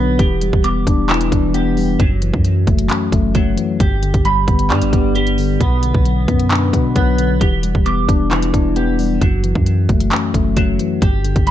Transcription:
Already playing: 808-style bass B1, tine electric piano B2 D3 F#3 B3 D4, clean electric guitar B3
0.19 808-style bass E1, tine electric piano E3, clean electric guitar G4, kick, closed hi-hat
0.41 tine electric piano G3, closed hi-hat
0.53 808-style bass E1, kick
0.64 tine electric piano B3, clean electric guitar D6, closed hi-hat
0.87 808-style bass E1, tine electric piano D4, kick, closed hi-hat
1.09 clean electric guitar E3, tine electric piano E4, clap, closed hi-hat
1.21 closed hi-hat
1.32 808-style bass E1, tine electric piano D4, kick, closed hi-hat
1.54 tine electric piano B3, clean electric guitar G4, closed hi-hat
1.77 tine electric piano G3, open hi-hat
2.00 808-style bass F#1, tine electric piano F#2, clean electric guitar F#3, kick, closed hi-hat
2.22 tine electric piano E3, closed hi-hat
2.34 808-style bass F#2, kick
2.45 tine electric piano F#3, closed hi-hat
2.67 808-style bass F#1, tine electric piano A3, kick, closed hi-hat
2.79 closed hi-hat
2.89 tine electric piano C#4, clap, closed hi-hat
3.12 808-style bass F#1, tine electric piano A3, kick, closed hi-hat
3.35 808-style bass F#1, clean electric guitar F#3, tine electric piano F#3, kick, closed hi-hat
3.58 tine electric piano E3, closed hi-hat
3.80 808-style bass G1, tine electric piano G2, clean electric guitar G4, kick, closed hi-hat
4.03 tine electric piano D3, closed hi-hat
4.14 808-style bass G1, kick, closed hi-hat
4.25 tine electric piano G3, clean electric guitar B5, closed hi-hat
4.48 808-style bass G1, tine electric piano B3, kick, closed hi-hat
4.59 closed hi-hat
4.70 808-style bass G2, clean electric guitar G3, tine electric piano D4, clap, closed hi-hat
4.82 808-style bass G1, closed hi-hat
4.93 808-style bass G1, tine electric piano B3, kick, closed hi-hat
5.15 tine electric piano G3, clean electric guitar G4, closed hi-hat
5.27 closed hi-hat
5.38 tine electric piano D3, open hi-hat
5.60 808-style bass B1, tine electric piano B2, clean electric guitar B3, kick, closed hi-hat
5.83 tine electric piano D3, closed hi-hat
5.94 808-style bass B1, kick
6.05 tine electric piano F#3, closed hi-hat
6.28 808-style bass F#2, tine electric piano B3, kick, closed hi-hat
6.39 closed hi-hat
6.50 tine electric piano D4, clap, closed hi-hat
6.73 808-style bass B2, tine electric piano B3, kick, closed hi-hat
6.96 808-style bass B1, tine electric piano F#3, clean electric guitar B3, kick, closed hi-hat
7.18 tine electric piano D3, closed hi-hat
7.41 808-style bass E1, tine electric piano E3, clean electric guitar G4, kick, closed hi-hat
7.63 tine electric piano G3, closed hi-hat
7.75 808-style bass E1, kick
7.86 tine electric piano B3, clean electric guitar D6, closed hi-hat
8.09 808-style bass E1, tine electric piano D4, kick, closed hi-hat
8.31 clean electric guitar E3, tine electric piano E4, clap, closed hi-hat
8.43 closed hi-hat
8.54 808-style bass E1, tine electric piano D4, kick, closed hi-hat
8.76 tine electric piano B3, clean electric guitar G4, closed hi-hat
8.99 tine electric piano G3, open hi-hat
9.21 808-style bass F#1, tine electric piano F#2, clean electric guitar F#3, kick, closed hi-hat
9.44 tine electric piano E3, closed hi-hat
9.55 808-style bass F#2, kick
9.66 tine electric piano F#3, closed hi-hat
9.89 808-style bass F#1, tine electric piano A3, kick, closed hi-hat
10.00 closed hi-hat
10.11 tine electric piano C#4, clap, closed hi-hat
10.34 808-style bass F#1, tine electric piano A3, kick, closed hi-hat
10.57 808-style bass F#1, clean electric guitar F#3, tine electric piano F#3, kick, closed hi-hat
10.79 tine electric piano E3, closed hi-hat
11.02 808-style bass G1, tine electric piano G2, clean electric guitar G4, kick, closed hi-hat
11.24 tine electric piano D3, closed hi-hat
11.36 808-style bass G1, kick, closed hi-hat
11.47 tine electric piano G3, clean electric guitar B5, closed hi-hat

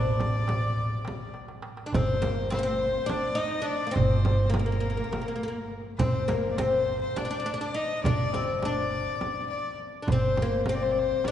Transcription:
Already playing: upright bass A1, oud D4, kamancheh D5
0.20 darbuka tek, frame drum
0.48 darbuka tek, frame drum
0.62 darbuka ka
1.05 darbuka tek, frame drum
1.34 darbuka tek
1.48 darbuka ka
1.62 darbuka tek
1.77 darbuka ka
1.86 oud D4
1.92 upright bass G1, oud C4, kamancheh C5, darbuka dum, frame drum
2.08 darbuka ka
2.22 oud A#3, darbuka tek, frame drum
2.50 oud C4, kamancheh C5, darbuka tek, frame drum
2.59 oud A#3
2.63 oud C4, kamancheh C5, darbuka ka
3.06 oud D4, darbuka tek, frame drum
3.10 kamancheh D5
3.35 oud D#4, kamancheh D#5
3.62 oud D4
3.66 kamancheh D5, darbuka ka
3.87 oud A#3
3.91 oud C4, kamancheh C5
3.96 upright bass G1, frame drum, darbuka dum
4.12 darbuka ka
4.25 darbuka tek, frame drum
4.46 oud A#3, kamancheh C5
4.50 kamancheh A#4, frame drum
4.54 darbuka tek
4.59 oud A#3
4.66 oud A#3, darbuka ka
4.72 oud A#3
4.80 oud A#3
4.90 oud A#3
4.97 oud A#3
5.04 oud A#3
5.12 oud A#3, darbuka tek, frame drum
5.21 oud A#3
5.28 oud A#3
5.36 oud A#3
5.43 oud A#3
5.48 oud A#3
5.71 darbuka ka
5.99 upright bass G1, oud C4, kamancheh C5, darbuka dum, frame drum
6.15 darbuka ka
6.28 oud A#3, kamancheh A#4, darbuka tek, frame drum
6.51 kamancheh D5
6.57 oud C4, kamancheh C5, darbuka tek, frame drum
6.73 darbuka ka
7.02 kamancheh C5
7.16 oud D4, kamancheh D5, darbuka tek, frame drum
7.25 oud D4
7.31 oud D4
7.40 oud D4
7.46 oud D4
7.54 oud D4
7.61 oud D4, kamancheh D5
7.74 oud D#4, kamancheh D#5
8.03 upright bass G1, oud D4, kamancheh D5, darbuka dum, frame drum
8.18 darbuka ka
8.33 oud C4, darbuka tek, frame drum
8.62 oud D4, kamancheh D5, darbuka tek, frame drum
8.77 darbuka ka
9.21 darbuka tek, frame drum
9.49 kamancheh D5, darbuka ka
9.80 darbuka ka
10.02 oud D4, kamancheh C5
10.07 upright bass G1, darbuka dum, frame drum
10.12 oud C4
10.23 darbuka ka
10.37 darbuka tek, frame drum
10.42 oud A#3
10.66 oud C4, kamancheh C5, darbuka tek, frame drum
10.75 kamancheh D5
10.80 kamancheh C5, darbuka ka
10.91 kamancheh D5
10.99 kamancheh C5
11.24 oud D4, kamancheh D5, darbuka tek, frame drum

